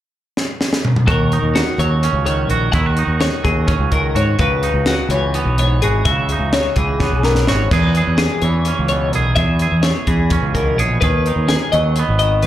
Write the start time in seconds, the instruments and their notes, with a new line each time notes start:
0.37 snare
0.61 snare
0.73 snare
0.85 mid tom
0.96 mid tom
1.07 fingered electric bass D#2, clean electric guitar D#3 F#4 A#4, kick, closed hi-hat
1.32 clean electric guitar D#4, closed hi-hat
1.43 fingered electric bass D#2
1.55 clean electric guitar F#4, snare, closed hi-hat
1.78 fingered electric bass D#2, clean electric guitar F#3 C#5, closed hi-hat
2.03 clean electric guitar C#4, closed hi-hat
2.13 fingered electric bass C#2
2.26 clean electric guitar D#3 C#5, closed hi-hat
2.49 fingered electric bass A#1, clean electric guitar F#4 A#4, closed hi-hat
2.72 fingered electric bass D#2, clean electric guitar D#3 E4 F#5, kick, closed hi-hat
2.86 clean electric guitar F#4
2.97 clean electric guitar D#4, closed hi-hat
3.07 fingered electric bass D#2
3.21 clean electric guitar C#5, snare, closed hi-hat
3.44 fingered electric bass D#2, clean electric guitar F#3 G#4, kick, closed hi-hat
3.67 clean electric guitar C#4, kick, closed hi-hat
3.79 fingered electric bass C#2
3.92 clean electric guitar D#3 A#4, kick, closed hi-hat
4.15 fingered electric bass G#2, clean electric guitar F#4 C#5, closed hi-hat
4.39 fingered electric bass C#2, clean electric guitar C#3 F#4 B4, kick, closed hi-hat
4.63 clean electric guitar D#4, closed hi-hat
4.74 fingered electric bass C#2
4.86 clean electric guitar F#4, snare, closed hi-hat
5.09 fingered electric bass C#2, clean electric guitar E3 C#5, closed hi-hat
5.34 clean electric guitar B3, closed hi-hat
5.45 fingered electric bass B1
5.58 clean electric guitar G#2 C#5, closed hi-hat
5.82 fingered electric bass G#1, clean electric guitar F#4 G#4, closed hi-hat
6.05 fingered electric bass C#2, clean electric guitar C#3 F#4 E5, kick, closed hi-hat
6.29 clean electric guitar D#4, closed hi-hat
6.39 fingered electric bass C#2
6.53 clean electric guitar C#5, snare, closed hi-hat
6.76 fingered electric bass C#2, clean electric guitar E3 G#4, kick, closed hi-hat
7.00 clean electric guitar B3, kick, snare
7.12 fingered electric bass B1
7.23 clean electric guitar G#2 A#4, snare
7.35 snare
7.47 fingered electric bass G#1, clean electric guitar F#4 C#5, snare
7.71 fingered electric bass E2, clean electric guitar E2 G#4 B4, kick, closed hi-hat, crash
7.95 clean electric guitar G#4, closed hi-hat
8.07 fingered electric bass E2
8.18 clean electric guitar G#4, snare, closed hi-hat
8.42 fingered electric bass E2, clean electric guitar E3 C#5, closed hi-hat
8.65 clean electric guitar C#4, closed hi-hat
8.79 fingered electric bass C#2
8.88 clean electric guitar B2 C#5, closed hi-hat
9.12 fingered electric bass B1, clean electric guitar G#4 A#4, closed hi-hat
9.36 fingered electric bass E2, clean electric guitar E2 G#4 E5, kick, closed hi-hat
9.59 clean electric guitar G#4, closed hi-hat
9.72 fingered electric bass E2
9.83 clean electric guitar C#5, snare, closed hi-hat
10.07 fingered electric bass E2, clean electric guitar E3 G#4, kick, closed hi-hat
10.30 clean electric guitar C#4, kick, closed hi-hat
10.43 fingered electric bass C#2
10.55 clean electric guitar B2 A#4, kick, closed hi-hat
10.77 fingered electric bass A#1, clean electric guitar G#4 C#5, closed hi-hat
11.01 fingered electric bass D#2, clean electric guitar D#3 G#4 B4, kick, closed hi-hat
11.26 clean electric guitar D#4, closed hi-hat
11.36 fingered electric bass D#2
11.48 clean electric guitar G#4, snare, closed hi-hat
11.72 fingered electric bass D#2, clean electric guitar F#3 D#5, closed hi-hat
11.96 clean electric guitar B3, closed hi-hat
12.08 fingered electric bass G#1
12.19 clean electric guitar D#3 D#5, closed hi-hat
12.43 fingered electric bass D#2, clean electric guitar B4, closed hi-hat